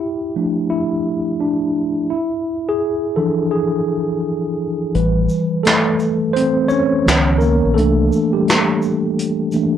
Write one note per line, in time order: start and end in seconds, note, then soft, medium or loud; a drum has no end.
0.00 0.69 E4 medium
0.00 2.13 G4 medium
0.36 1.37 F3 medium
0.36 1.37 A3 soft
0.36 1.38 D4 medium
0.70 1.43 E4 medium
1.40 2.13 D4 medium
2.10 2.71 E4 medium
2.69 3.18 G#4 medium
3.16 4.89 E3 soft
3.16 4.90 F3 soft
3.16 4.90 D4 medium
3.16 3.53 A4 medium
3.51 4.54 G#4 medium
4.94 5.27 A1 medium
4.94 7.02 E3 medium
4.94 7.02 G3 medium
4.94 7.02 B4 medium
4.94 closed hi-hat medium
5.29 shaker soft
5.63 6.31 A3 medium
5.63 6.37 A4 medium
5.63 snare loud
5.63 closed hi-hat medium
5.67 clap medium
5.99 closed hi-hat soft
5.99 shaker soft
6.33 6.68 C4 medium
6.33 6.70 C5 loud
6.33 closed hi-hat medium
6.68 7.38 C#4 medium
6.68 7.42 C#5 loud
6.68 shaker soft
7.06 7.61 C#2 loud
7.06 7.73 D#3 medium
7.06 7.73 F3 medium
7.06 7.73 B3 medium
7.06 snare loud
7.06 clap medium
7.06 closed hi-hat medium
7.38 7.74 A#3 medium
7.38 7.76 A#4 loud
7.38 shaker soft
7.65 7.78 A#1 medium
7.74 8.09 C2 medium
7.74 9.52 E3 medium
7.74 8.31 A3 medium
7.74 9.53 A#3 soft
7.74 9.53 D4 medium
7.74 8.35 A4 loud
7.74 closed hi-hat medium
8.12 shaker soft
8.33 9.73 G3 medium
8.33 9.71 G4 medium
8.48 snare loud
8.48 clap medium
8.48 closed hi-hat medium
8.82 shaker soft
9.19 closed hi-hat medium
9.52 9.78 E3 soft
9.52 9.78 A3 soft
9.52 9.78 A#3 soft
9.52 9.78 D4 medium
9.52 closed hi-hat soft
9.52 shaker soft